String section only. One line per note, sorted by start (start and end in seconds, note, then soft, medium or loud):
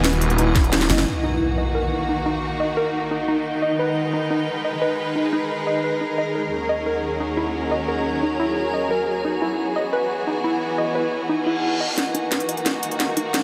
0.00 1.04 E3 medium
0.00 1.04 B3 medium
0.00 1.04 F#4 medium
0.00 1.03 G#4 medium
1.07 6.48 D#3 medium
1.07 3.77 A#3 medium
1.07 6.48 D#4 medium
1.07 3.77 F#4 medium
3.79 6.49 G#3 medium
3.79 9.21 A#4 medium
3.79 6.49 B4 medium
6.52 9.22 D#2 medium
6.52 9.22 F#3 medium
6.52 9.22 C#4 medium
6.52 11.93 G#4 medium
9.25 11.95 E3 medium
9.25 11.95 B3 medium
9.25 11.95 F#4 medium
11.97 13.43 D#3 medium
11.97 13.43 A#3 medium
11.97 13.43 D#4 medium
11.97 13.43 F#4 medium